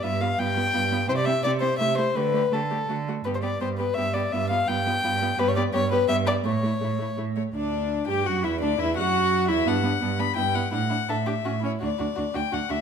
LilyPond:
<<
  \new Staff \with { instrumentName = "Violin" } { \time 3/4 \key g \major \tempo 4 = 169 e''8 f''8 g''2 | c''16 d''16 e''8 d''8 c''8 e''8 c''8 | b'4 a'4. r8 | b'16 c''16 d''8 c''8 b'8 e''8 d''8 |
e''8 f''8 g''2 | \key d \major b'16 cis''16 d''8 cis''8 b'8 e''8 d''8 | cis''2 r4 | d'4. g'8 fis'8 e'8 |
d'8 e'8 fis'4. e'8 | d'8 d'8 d'8 d'8 e'8 e'8 | e'8 e'8 a'8 g'8 fis'8 e'8 | fis'8 fis'8 fis'8 fis'8 fis'8 fis'8 | }
  \new Staff \with { instrumentName = "Violin" } { \time 3/4 \key g \major f'8 f'8 f'8 f'8 f'8 f'8 | e'8 e'8 e'8 e'8 e'8 e'8 | g'8 g'8 g'8 g'8 fis'8 fis'8 | g'8 g'8 g'8 g'8 g'8 g'8 |
f'8 f'8 f'8 f'8 f'8 f'8 | \key d \major g'8 g'8 g'8 g'8 g'8 g'8 | e'8 e'8 e'8 e'8 e'8 cis''8 | d''4. g''8 fis''8 e''8 |
d''8 e''8 fis''4. e''8 | fis''4. b''8 g''8 fis''8 | fis''4 e''4. cis''8 | d''4. g''8 fis''8 e''8 | }
  \new Staff \with { instrumentName = "Viola" } { \time 3/4 \key g \major b8 b8 b8 b8 b8 b8 | c'8 c'8 c'8 c'8 a8 a8 | a8 a8 a8 a8 a8 a8 | b8 b8 b8 b8 b8 b8 |
b8 b8 b8 b8 b8 b8 | \key d \major b8 b8 b8 b8 b8 b8 | a8 a8 a8 a8 a8 a8 | d'4. g'8 fis'8 e'8 |
d'8 e'8 fis'4. e'8 | b8 b8 b8 b8 b8 b8 | d'8 d'8 d'8 d'8 cis'8 cis'8 | d'8 d'8 d'8 d'8 d'8 d'8 | }
  \new Staff \with { instrumentName = "Cello" } { \clef bass \time 3/4 \key g \major g,4 g,4 g,4 | c4 c4 c4 | d4 d4 d4 | g,4 g,4 g,4 |
g,4 g,4 g,4 | \key d \major g,4 g,4 g,4 | a,4 a,4 a,4 | d,4. g,8 fis,8 e,8 |
d,8 e,8 fis,4. e,8 | g,4 g,4 g,4 | a,4 a,4 a,4 | d,8 d,8 d,8 d,8 d,8 d,8 | }
>>